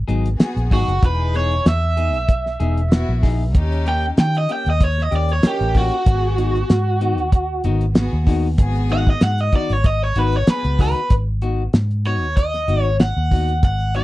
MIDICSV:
0, 0, Header, 1, 7, 480
1, 0, Start_track
1, 0, Key_signature, 5, "minor"
1, 0, Tempo, 630252
1, 781, Time_signature, 4, 2, 24, 8
1, 10692, End_track
2, 0, Start_track
2, 0, Title_t, "Overdriven electric guitar"
2, 0, Program_c, 0, 29
2, 558, Note_on_c, 0, 66, 90
2, 783, Note_off_c, 0, 66, 0
2, 805, Note_on_c, 0, 71, 93
2, 1026, Note_off_c, 0, 71, 0
2, 1042, Note_on_c, 0, 73, 90
2, 1265, Note_off_c, 0, 73, 0
2, 1279, Note_on_c, 0, 76, 99
2, 2681, Note_off_c, 0, 76, 0
2, 2962, Note_on_c, 0, 79, 102
2, 3079, Note_off_c, 0, 79, 0
2, 3199, Note_on_c, 0, 79, 86
2, 3317, Note_off_c, 0, 79, 0
2, 3336, Note_on_c, 0, 75, 84
2, 3431, Note_off_c, 0, 75, 0
2, 3446, Note_on_c, 0, 79, 86
2, 3561, Note_off_c, 0, 79, 0
2, 3581, Note_on_c, 0, 75, 82
2, 3673, Note_off_c, 0, 75, 0
2, 3691, Note_on_c, 0, 73, 93
2, 3823, Note_off_c, 0, 73, 0
2, 3823, Note_on_c, 0, 75, 86
2, 3915, Note_off_c, 0, 75, 0
2, 3930, Note_on_c, 0, 74, 100
2, 4043, Note_off_c, 0, 74, 0
2, 4058, Note_on_c, 0, 73, 81
2, 4152, Note_off_c, 0, 73, 0
2, 4166, Note_on_c, 0, 67, 87
2, 4387, Note_off_c, 0, 67, 0
2, 4400, Note_on_c, 0, 66, 95
2, 5799, Note_off_c, 0, 66, 0
2, 6798, Note_on_c, 0, 78, 109
2, 6916, Note_off_c, 0, 78, 0
2, 6933, Note_on_c, 0, 75, 85
2, 7028, Note_off_c, 0, 75, 0
2, 7034, Note_on_c, 0, 78, 97
2, 7163, Note_off_c, 0, 78, 0
2, 7163, Note_on_c, 0, 75, 95
2, 7263, Note_off_c, 0, 75, 0
2, 7279, Note_on_c, 0, 74, 103
2, 7408, Note_off_c, 0, 74, 0
2, 7408, Note_on_c, 0, 73, 83
2, 7505, Note_off_c, 0, 73, 0
2, 7512, Note_on_c, 0, 75, 104
2, 7632, Note_off_c, 0, 75, 0
2, 7646, Note_on_c, 0, 73, 108
2, 7758, Note_off_c, 0, 73, 0
2, 7758, Note_on_c, 0, 71, 95
2, 7888, Note_off_c, 0, 71, 0
2, 7888, Note_on_c, 0, 73, 93
2, 7986, Note_off_c, 0, 73, 0
2, 7999, Note_on_c, 0, 71, 100
2, 8222, Note_off_c, 0, 71, 0
2, 8238, Note_on_c, 0, 71, 92
2, 8462, Note_off_c, 0, 71, 0
2, 9190, Note_on_c, 0, 73, 93
2, 9421, Note_off_c, 0, 73, 0
2, 9424, Note_on_c, 0, 75, 97
2, 9766, Note_off_c, 0, 75, 0
2, 9766, Note_on_c, 0, 73, 97
2, 9872, Note_off_c, 0, 73, 0
2, 9908, Note_on_c, 0, 78, 93
2, 10384, Note_off_c, 0, 78, 0
2, 10394, Note_on_c, 0, 78, 100
2, 10631, Note_off_c, 0, 78, 0
2, 10634, Note_on_c, 0, 75, 83
2, 10692, Note_off_c, 0, 75, 0
2, 10692, End_track
3, 0, Start_track
3, 0, Title_t, "String section"
3, 0, Program_c, 1, 48
3, 281, Note_on_c, 1, 59, 83
3, 288, Note_on_c, 1, 66, 85
3, 301, Note_on_c, 1, 68, 101
3, 531, Note_off_c, 1, 59, 0
3, 534, Note_off_c, 1, 66, 0
3, 541, Note_off_c, 1, 68, 0
3, 773, Note_on_c, 1, 63, 71
3, 785, Note_on_c, 1, 64, 70
3, 786, Note_on_c, 1, 68, 81
3, 1257, Note_off_c, 1, 63, 0
3, 1264, Note_off_c, 1, 64, 0
3, 1264, Note_off_c, 1, 68, 0
3, 2215, Note_on_c, 1, 59, 88
3, 2223, Note_on_c, 1, 64, 81
3, 2229, Note_on_c, 1, 66, 94
3, 2459, Note_off_c, 1, 59, 0
3, 2462, Note_off_c, 1, 64, 0
3, 2466, Note_off_c, 1, 66, 0
3, 2685, Note_on_c, 1, 61, 84
3, 2693, Note_on_c, 1, 63, 88
3, 2699, Note_on_c, 1, 67, 101
3, 3174, Note_off_c, 1, 61, 0
3, 3178, Note_off_c, 1, 63, 0
3, 3181, Note_off_c, 1, 67, 0
3, 4126, Note_on_c, 1, 61, 79
3, 4135, Note_on_c, 1, 63, 67
3, 4140, Note_on_c, 1, 70, 86
3, 4374, Note_off_c, 1, 61, 0
3, 4378, Note_off_c, 1, 63, 0
3, 4381, Note_off_c, 1, 70, 0
3, 4610, Note_on_c, 1, 59, 72
3, 4612, Note_on_c, 1, 66, 69
3, 4620, Note_on_c, 1, 68, 85
3, 5095, Note_off_c, 1, 59, 0
3, 5097, Note_off_c, 1, 66, 0
3, 5100, Note_off_c, 1, 68, 0
3, 6046, Note_on_c, 1, 59, 96
3, 6057, Note_on_c, 1, 66, 87
3, 6062, Note_on_c, 1, 68, 94
3, 6293, Note_off_c, 1, 59, 0
3, 6298, Note_off_c, 1, 66, 0
3, 6301, Note_off_c, 1, 68, 0
3, 6524, Note_on_c, 1, 59, 93
3, 6535, Note_on_c, 1, 66, 82
3, 6543, Note_on_c, 1, 68, 112
3, 7011, Note_off_c, 1, 59, 0
3, 7017, Note_off_c, 1, 66, 0
3, 7021, Note_off_c, 1, 68, 0
3, 7963, Note_on_c, 1, 59, 79
3, 7969, Note_on_c, 1, 66, 62
3, 7977, Note_on_c, 1, 68, 79
3, 8211, Note_off_c, 1, 59, 0
3, 8214, Note_off_c, 1, 66, 0
3, 8218, Note_off_c, 1, 68, 0
3, 10692, End_track
4, 0, Start_track
4, 0, Title_t, "Clean electric guitar"
4, 0, Program_c, 2, 27
4, 58, Note_on_c, 2, 68, 75
4, 61, Note_on_c, 2, 63, 74
4, 64, Note_on_c, 2, 59, 79
4, 66, Note_on_c, 2, 54, 67
4, 212, Note_off_c, 2, 68, 0
4, 213, Note_off_c, 2, 63, 0
4, 215, Note_off_c, 2, 59, 0
4, 216, Note_off_c, 2, 54, 0
4, 544, Note_on_c, 2, 68, 70
4, 545, Note_on_c, 2, 63, 67
4, 549, Note_on_c, 2, 59, 59
4, 553, Note_on_c, 2, 54, 51
4, 695, Note_off_c, 2, 68, 0
4, 696, Note_off_c, 2, 63, 0
4, 697, Note_off_c, 2, 59, 0
4, 699, Note_off_c, 2, 54, 0
4, 1019, Note_on_c, 2, 68, 68
4, 1028, Note_on_c, 2, 63, 66
4, 1031, Note_on_c, 2, 59, 58
4, 1173, Note_off_c, 2, 68, 0
4, 1177, Note_off_c, 2, 63, 0
4, 1179, Note_off_c, 2, 59, 0
4, 1500, Note_on_c, 2, 68, 62
4, 1505, Note_on_c, 2, 63, 62
4, 1510, Note_on_c, 2, 59, 49
4, 1653, Note_off_c, 2, 68, 0
4, 1656, Note_off_c, 2, 63, 0
4, 1658, Note_off_c, 2, 59, 0
4, 1979, Note_on_c, 2, 68, 78
4, 1986, Note_on_c, 2, 63, 79
4, 1991, Note_on_c, 2, 59, 68
4, 2133, Note_off_c, 2, 68, 0
4, 2137, Note_off_c, 2, 63, 0
4, 2139, Note_off_c, 2, 59, 0
4, 2458, Note_on_c, 2, 68, 82
4, 2465, Note_on_c, 2, 63, 71
4, 2469, Note_on_c, 2, 59, 67
4, 2613, Note_off_c, 2, 68, 0
4, 2616, Note_off_c, 2, 63, 0
4, 2618, Note_off_c, 2, 59, 0
4, 2938, Note_on_c, 2, 67, 69
4, 2944, Note_on_c, 2, 61, 70
4, 2948, Note_on_c, 2, 58, 60
4, 3092, Note_off_c, 2, 67, 0
4, 3095, Note_off_c, 2, 61, 0
4, 3097, Note_off_c, 2, 58, 0
4, 3421, Note_on_c, 2, 67, 63
4, 3425, Note_on_c, 2, 61, 65
4, 3430, Note_on_c, 2, 58, 53
4, 3574, Note_off_c, 2, 67, 0
4, 3576, Note_off_c, 2, 61, 0
4, 3578, Note_off_c, 2, 58, 0
4, 3894, Note_on_c, 2, 67, 80
4, 3899, Note_on_c, 2, 61, 71
4, 3904, Note_on_c, 2, 58, 66
4, 4050, Note_off_c, 2, 67, 0
4, 4053, Note_off_c, 2, 61, 0
4, 4055, Note_off_c, 2, 58, 0
4, 4374, Note_on_c, 2, 67, 70
4, 4380, Note_on_c, 2, 61, 61
4, 4385, Note_on_c, 2, 58, 64
4, 4530, Note_off_c, 2, 67, 0
4, 4533, Note_off_c, 2, 61, 0
4, 4535, Note_off_c, 2, 58, 0
4, 4853, Note_on_c, 2, 66, 74
4, 4857, Note_on_c, 2, 63, 68
4, 4861, Note_on_c, 2, 59, 65
4, 4863, Note_on_c, 2, 51, 57
4, 5009, Note_off_c, 2, 66, 0
4, 5011, Note_off_c, 2, 63, 0
4, 5014, Note_off_c, 2, 59, 0
4, 5015, Note_off_c, 2, 51, 0
4, 5338, Note_on_c, 2, 66, 63
4, 5340, Note_on_c, 2, 63, 70
4, 5343, Note_on_c, 2, 59, 67
4, 5347, Note_on_c, 2, 51, 60
4, 5492, Note_off_c, 2, 66, 0
4, 5493, Note_off_c, 2, 63, 0
4, 5494, Note_off_c, 2, 59, 0
4, 5496, Note_off_c, 2, 51, 0
4, 5823, Note_on_c, 2, 66, 77
4, 5826, Note_on_c, 2, 63, 88
4, 5828, Note_on_c, 2, 59, 74
4, 5833, Note_on_c, 2, 51, 70
4, 5974, Note_off_c, 2, 66, 0
4, 5976, Note_off_c, 2, 59, 0
4, 5976, Note_off_c, 2, 63, 0
4, 5979, Note_off_c, 2, 51, 0
4, 6297, Note_on_c, 2, 66, 88
4, 6302, Note_on_c, 2, 63, 86
4, 6305, Note_on_c, 2, 59, 72
4, 6307, Note_on_c, 2, 51, 67
4, 6451, Note_off_c, 2, 66, 0
4, 6453, Note_off_c, 2, 63, 0
4, 6455, Note_off_c, 2, 59, 0
4, 6456, Note_off_c, 2, 51, 0
4, 6779, Note_on_c, 2, 66, 72
4, 6784, Note_on_c, 2, 63, 77
4, 6786, Note_on_c, 2, 59, 71
4, 6791, Note_on_c, 2, 51, 61
4, 6932, Note_off_c, 2, 66, 0
4, 6934, Note_off_c, 2, 63, 0
4, 6935, Note_off_c, 2, 59, 0
4, 6938, Note_off_c, 2, 51, 0
4, 7262, Note_on_c, 2, 66, 71
4, 7266, Note_on_c, 2, 63, 60
4, 7268, Note_on_c, 2, 59, 60
4, 7270, Note_on_c, 2, 51, 60
4, 7413, Note_off_c, 2, 66, 0
4, 7415, Note_off_c, 2, 63, 0
4, 7416, Note_off_c, 2, 59, 0
4, 7417, Note_off_c, 2, 51, 0
4, 7741, Note_on_c, 2, 66, 82
4, 7746, Note_on_c, 2, 63, 71
4, 7750, Note_on_c, 2, 59, 76
4, 7751, Note_on_c, 2, 51, 64
4, 7893, Note_off_c, 2, 66, 0
4, 7895, Note_off_c, 2, 63, 0
4, 7897, Note_off_c, 2, 51, 0
4, 7897, Note_off_c, 2, 59, 0
4, 8221, Note_on_c, 2, 66, 78
4, 8224, Note_on_c, 2, 63, 76
4, 8229, Note_on_c, 2, 59, 65
4, 8231, Note_on_c, 2, 51, 63
4, 8373, Note_off_c, 2, 66, 0
4, 8374, Note_off_c, 2, 63, 0
4, 8376, Note_off_c, 2, 59, 0
4, 8377, Note_off_c, 2, 51, 0
4, 8699, Note_on_c, 2, 66, 82
4, 8705, Note_on_c, 2, 63, 57
4, 8708, Note_on_c, 2, 59, 60
4, 8851, Note_off_c, 2, 66, 0
4, 8854, Note_off_c, 2, 63, 0
4, 8856, Note_off_c, 2, 59, 0
4, 9180, Note_on_c, 2, 66, 53
4, 9187, Note_on_c, 2, 63, 51
4, 9190, Note_on_c, 2, 59, 48
4, 9332, Note_off_c, 2, 66, 0
4, 9335, Note_off_c, 2, 63, 0
4, 9337, Note_off_c, 2, 59, 0
4, 9658, Note_on_c, 2, 66, 66
4, 9664, Note_on_c, 2, 63, 64
4, 9668, Note_on_c, 2, 59, 55
4, 9811, Note_off_c, 2, 66, 0
4, 9815, Note_off_c, 2, 63, 0
4, 9816, Note_off_c, 2, 59, 0
4, 10142, Note_on_c, 2, 66, 64
4, 10149, Note_on_c, 2, 63, 58
4, 10153, Note_on_c, 2, 59, 48
4, 10294, Note_off_c, 2, 66, 0
4, 10297, Note_off_c, 2, 63, 0
4, 10299, Note_off_c, 2, 59, 0
4, 10626, Note_on_c, 2, 66, 66
4, 10632, Note_on_c, 2, 63, 63
4, 10637, Note_on_c, 2, 59, 59
4, 10692, Note_off_c, 2, 59, 0
4, 10692, Note_off_c, 2, 63, 0
4, 10692, Note_off_c, 2, 66, 0
4, 10692, End_track
5, 0, Start_track
5, 0, Title_t, "Fingered electric bass"
5, 0, Program_c, 3, 33
5, 63, Note_on_c, 3, 32, 88
5, 275, Note_off_c, 3, 32, 0
5, 430, Note_on_c, 3, 34, 99
5, 529, Note_off_c, 3, 34, 0
5, 542, Note_on_c, 3, 32, 94
5, 659, Note_off_c, 3, 32, 0
5, 668, Note_on_c, 3, 30, 90
5, 768, Note_off_c, 3, 30, 0
5, 782, Note_on_c, 3, 28, 108
5, 1208, Note_off_c, 3, 28, 0
5, 1261, Note_on_c, 3, 40, 97
5, 1634, Note_off_c, 3, 40, 0
5, 1634, Note_on_c, 3, 35, 87
5, 1982, Note_on_c, 3, 28, 88
5, 1994, Note_off_c, 3, 35, 0
5, 2311, Note_off_c, 3, 28, 0
5, 2350, Note_on_c, 3, 34, 105
5, 2700, Note_off_c, 3, 34, 0
5, 2700, Note_on_c, 3, 39, 92
5, 3127, Note_off_c, 3, 39, 0
5, 3184, Note_on_c, 3, 51, 102
5, 3396, Note_off_c, 3, 51, 0
5, 3553, Note_on_c, 3, 39, 94
5, 3863, Note_off_c, 3, 39, 0
5, 3901, Note_on_c, 3, 39, 93
5, 4114, Note_off_c, 3, 39, 0
5, 4270, Note_on_c, 3, 33, 105
5, 4484, Note_off_c, 3, 33, 0
5, 4618, Note_on_c, 3, 32, 105
5, 5046, Note_off_c, 3, 32, 0
5, 5102, Note_on_c, 3, 44, 93
5, 5472, Note_off_c, 3, 44, 0
5, 5472, Note_on_c, 3, 39, 93
5, 5820, Note_on_c, 3, 32, 82
5, 5831, Note_off_c, 3, 39, 0
5, 6149, Note_off_c, 3, 32, 0
5, 6190, Note_on_c, 3, 39, 111
5, 6536, Note_on_c, 3, 32, 104
5, 6548, Note_off_c, 3, 39, 0
5, 6964, Note_off_c, 3, 32, 0
5, 7019, Note_on_c, 3, 44, 100
5, 7232, Note_off_c, 3, 44, 0
5, 7388, Note_on_c, 3, 32, 91
5, 7699, Note_off_c, 3, 32, 0
5, 7735, Note_on_c, 3, 32, 87
5, 7950, Note_off_c, 3, 32, 0
5, 8107, Note_on_c, 3, 37, 108
5, 8321, Note_off_c, 3, 37, 0
5, 8458, Note_on_c, 3, 32, 90
5, 8885, Note_off_c, 3, 32, 0
5, 8938, Note_on_c, 3, 44, 91
5, 9308, Note_off_c, 3, 44, 0
5, 9308, Note_on_c, 3, 39, 90
5, 9656, Note_on_c, 3, 32, 85
5, 9668, Note_off_c, 3, 39, 0
5, 9987, Note_off_c, 3, 32, 0
5, 10028, Note_on_c, 3, 39, 100
5, 10381, Note_on_c, 3, 32, 92
5, 10393, Note_off_c, 3, 39, 0
5, 10692, Note_off_c, 3, 32, 0
5, 10692, End_track
6, 0, Start_track
6, 0, Title_t, "Muted fingered electric bass strokes"
6, 4144, Note_on_c, 9, 29, 41
6, 4220, Note_off_c, 9, 29, 0
6, 10692, End_track
7, 0, Start_track
7, 0, Title_t, "Drums"
7, 64, Note_on_c, 9, 42, 60
7, 141, Note_off_c, 9, 42, 0
7, 195, Note_on_c, 9, 42, 47
7, 271, Note_off_c, 9, 42, 0
7, 303, Note_on_c, 9, 42, 84
7, 306, Note_on_c, 9, 38, 108
7, 379, Note_off_c, 9, 42, 0
7, 382, Note_off_c, 9, 38, 0
7, 435, Note_on_c, 9, 42, 44
7, 511, Note_off_c, 9, 42, 0
7, 542, Note_on_c, 9, 36, 72
7, 543, Note_on_c, 9, 46, 79
7, 618, Note_off_c, 9, 36, 0
7, 620, Note_off_c, 9, 46, 0
7, 674, Note_on_c, 9, 42, 38
7, 750, Note_off_c, 9, 42, 0
7, 781, Note_on_c, 9, 36, 122
7, 782, Note_on_c, 9, 42, 87
7, 858, Note_off_c, 9, 36, 0
7, 858, Note_off_c, 9, 42, 0
7, 1022, Note_on_c, 9, 42, 56
7, 1098, Note_off_c, 9, 42, 0
7, 1153, Note_on_c, 9, 42, 36
7, 1229, Note_off_c, 9, 42, 0
7, 1262, Note_on_c, 9, 42, 77
7, 1265, Note_on_c, 9, 38, 108
7, 1339, Note_off_c, 9, 42, 0
7, 1342, Note_off_c, 9, 38, 0
7, 1502, Note_on_c, 9, 42, 63
7, 1578, Note_off_c, 9, 42, 0
7, 1631, Note_on_c, 9, 42, 38
7, 1707, Note_off_c, 9, 42, 0
7, 1740, Note_on_c, 9, 42, 78
7, 1741, Note_on_c, 9, 36, 91
7, 1816, Note_off_c, 9, 42, 0
7, 1818, Note_off_c, 9, 36, 0
7, 1875, Note_on_c, 9, 38, 35
7, 1951, Note_off_c, 9, 38, 0
7, 1981, Note_on_c, 9, 42, 56
7, 2058, Note_off_c, 9, 42, 0
7, 2113, Note_on_c, 9, 42, 40
7, 2189, Note_off_c, 9, 42, 0
7, 2221, Note_on_c, 9, 42, 79
7, 2224, Note_on_c, 9, 38, 118
7, 2297, Note_off_c, 9, 42, 0
7, 2300, Note_off_c, 9, 38, 0
7, 2461, Note_on_c, 9, 46, 83
7, 2462, Note_on_c, 9, 36, 79
7, 2464, Note_on_c, 9, 38, 37
7, 2537, Note_off_c, 9, 46, 0
7, 2538, Note_off_c, 9, 36, 0
7, 2540, Note_off_c, 9, 38, 0
7, 2701, Note_on_c, 9, 36, 122
7, 2701, Note_on_c, 9, 42, 96
7, 2777, Note_off_c, 9, 36, 0
7, 2777, Note_off_c, 9, 42, 0
7, 2835, Note_on_c, 9, 42, 42
7, 2911, Note_off_c, 9, 42, 0
7, 2942, Note_on_c, 9, 42, 65
7, 3018, Note_off_c, 9, 42, 0
7, 3179, Note_on_c, 9, 42, 92
7, 3182, Note_on_c, 9, 38, 110
7, 3256, Note_off_c, 9, 42, 0
7, 3259, Note_off_c, 9, 38, 0
7, 3312, Note_on_c, 9, 42, 47
7, 3389, Note_off_c, 9, 42, 0
7, 3419, Note_on_c, 9, 42, 69
7, 3495, Note_off_c, 9, 42, 0
7, 3549, Note_on_c, 9, 42, 43
7, 3625, Note_off_c, 9, 42, 0
7, 3659, Note_on_c, 9, 42, 94
7, 3660, Note_on_c, 9, 36, 93
7, 3735, Note_off_c, 9, 42, 0
7, 3736, Note_off_c, 9, 36, 0
7, 3794, Note_on_c, 9, 38, 38
7, 3870, Note_off_c, 9, 38, 0
7, 3899, Note_on_c, 9, 42, 68
7, 3975, Note_off_c, 9, 42, 0
7, 4028, Note_on_c, 9, 42, 45
7, 4104, Note_off_c, 9, 42, 0
7, 4134, Note_on_c, 9, 42, 97
7, 4137, Note_on_c, 9, 38, 116
7, 4210, Note_off_c, 9, 42, 0
7, 4213, Note_off_c, 9, 38, 0
7, 4268, Note_on_c, 9, 42, 42
7, 4345, Note_off_c, 9, 42, 0
7, 4375, Note_on_c, 9, 46, 89
7, 4378, Note_on_c, 9, 36, 70
7, 4451, Note_off_c, 9, 46, 0
7, 4454, Note_off_c, 9, 36, 0
7, 4508, Note_on_c, 9, 42, 38
7, 4584, Note_off_c, 9, 42, 0
7, 4618, Note_on_c, 9, 36, 127
7, 4618, Note_on_c, 9, 42, 91
7, 4694, Note_off_c, 9, 42, 0
7, 4695, Note_off_c, 9, 36, 0
7, 4859, Note_on_c, 9, 42, 62
7, 4936, Note_off_c, 9, 42, 0
7, 4992, Note_on_c, 9, 42, 40
7, 5068, Note_off_c, 9, 42, 0
7, 5099, Note_on_c, 9, 42, 84
7, 5102, Note_on_c, 9, 38, 104
7, 5176, Note_off_c, 9, 42, 0
7, 5179, Note_off_c, 9, 38, 0
7, 5339, Note_on_c, 9, 42, 66
7, 5415, Note_off_c, 9, 42, 0
7, 5469, Note_on_c, 9, 42, 38
7, 5545, Note_off_c, 9, 42, 0
7, 5577, Note_on_c, 9, 42, 86
7, 5578, Note_on_c, 9, 36, 90
7, 5653, Note_off_c, 9, 42, 0
7, 5654, Note_off_c, 9, 36, 0
7, 5817, Note_on_c, 9, 42, 66
7, 5893, Note_off_c, 9, 42, 0
7, 5947, Note_on_c, 9, 42, 43
7, 6023, Note_off_c, 9, 42, 0
7, 6055, Note_on_c, 9, 42, 91
7, 6058, Note_on_c, 9, 38, 118
7, 6131, Note_off_c, 9, 42, 0
7, 6134, Note_off_c, 9, 38, 0
7, 6295, Note_on_c, 9, 46, 80
7, 6297, Note_on_c, 9, 36, 74
7, 6371, Note_off_c, 9, 46, 0
7, 6373, Note_off_c, 9, 36, 0
7, 6534, Note_on_c, 9, 42, 94
7, 6537, Note_on_c, 9, 36, 116
7, 6610, Note_off_c, 9, 42, 0
7, 6613, Note_off_c, 9, 36, 0
7, 6665, Note_on_c, 9, 42, 45
7, 6741, Note_off_c, 9, 42, 0
7, 6773, Note_on_c, 9, 42, 72
7, 6849, Note_off_c, 9, 42, 0
7, 6906, Note_on_c, 9, 36, 76
7, 6982, Note_off_c, 9, 36, 0
7, 7013, Note_on_c, 9, 42, 87
7, 7016, Note_on_c, 9, 38, 105
7, 7089, Note_off_c, 9, 42, 0
7, 7092, Note_off_c, 9, 38, 0
7, 7145, Note_on_c, 9, 42, 49
7, 7221, Note_off_c, 9, 42, 0
7, 7252, Note_on_c, 9, 42, 70
7, 7256, Note_on_c, 9, 36, 82
7, 7328, Note_off_c, 9, 42, 0
7, 7332, Note_off_c, 9, 36, 0
7, 7384, Note_on_c, 9, 42, 43
7, 7387, Note_on_c, 9, 38, 39
7, 7460, Note_off_c, 9, 42, 0
7, 7463, Note_off_c, 9, 38, 0
7, 7495, Note_on_c, 9, 42, 91
7, 7496, Note_on_c, 9, 36, 96
7, 7571, Note_off_c, 9, 42, 0
7, 7572, Note_off_c, 9, 36, 0
7, 7734, Note_on_c, 9, 42, 77
7, 7811, Note_off_c, 9, 42, 0
7, 7862, Note_on_c, 9, 42, 46
7, 7939, Note_off_c, 9, 42, 0
7, 7974, Note_on_c, 9, 42, 97
7, 7977, Note_on_c, 9, 38, 127
7, 8051, Note_off_c, 9, 42, 0
7, 8054, Note_off_c, 9, 38, 0
7, 8105, Note_on_c, 9, 42, 44
7, 8181, Note_off_c, 9, 42, 0
7, 8214, Note_on_c, 9, 46, 90
7, 8217, Note_on_c, 9, 36, 82
7, 8217, Note_on_c, 9, 38, 35
7, 8290, Note_off_c, 9, 46, 0
7, 8293, Note_off_c, 9, 36, 0
7, 8293, Note_off_c, 9, 38, 0
7, 8345, Note_on_c, 9, 42, 42
7, 8421, Note_off_c, 9, 42, 0
7, 8454, Note_on_c, 9, 42, 84
7, 8457, Note_on_c, 9, 36, 101
7, 8530, Note_off_c, 9, 42, 0
7, 8534, Note_off_c, 9, 36, 0
7, 8695, Note_on_c, 9, 42, 50
7, 8771, Note_off_c, 9, 42, 0
7, 8936, Note_on_c, 9, 42, 70
7, 8939, Note_on_c, 9, 38, 107
7, 9012, Note_off_c, 9, 42, 0
7, 9015, Note_off_c, 9, 38, 0
7, 9068, Note_on_c, 9, 42, 36
7, 9145, Note_off_c, 9, 42, 0
7, 9178, Note_on_c, 9, 42, 58
7, 9254, Note_off_c, 9, 42, 0
7, 9418, Note_on_c, 9, 42, 82
7, 9419, Note_on_c, 9, 36, 83
7, 9494, Note_off_c, 9, 42, 0
7, 9496, Note_off_c, 9, 36, 0
7, 9549, Note_on_c, 9, 42, 38
7, 9552, Note_on_c, 9, 38, 33
7, 9625, Note_off_c, 9, 42, 0
7, 9628, Note_off_c, 9, 38, 0
7, 9659, Note_on_c, 9, 42, 57
7, 9735, Note_off_c, 9, 42, 0
7, 9898, Note_on_c, 9, 42, 78
7, 9901, Note_on_c, 9, 38, 108
7, 9974, Note_off_c, 9, 42, 0
7, 9977, Note_off_c, 9, 38, 0
7, 10139, Note_on_c, 9, 46, 82
7, 10140, Note_on_c, 9, 36, 70
7, 10215, Note_off_c, 9, 46, 0
7, 10216, Note_off_c, 9, 36, 0
7, 10270, Note_on_c, 9, 42, 34
7, 10346, Note_off_c, 9, 42, 0
7, 10380, Note_on_c, 9, 36, 125
7, 10380, Note_on_c, 9, 42, 87
7, 10456, Note_off_c, 9, 42, 0
7, 10457, Note_off_c, 9, 36, 0
7, 10510, Note_on_c, 9, 42, 38
7, 10586, Note_off_c, 9, 42, 0
7, 10619, Note_on_c, 9, 42, 59
7, 10692, Note_off_c, 9, 42, 0
7, 10692, End_track
0, 0, End_of_file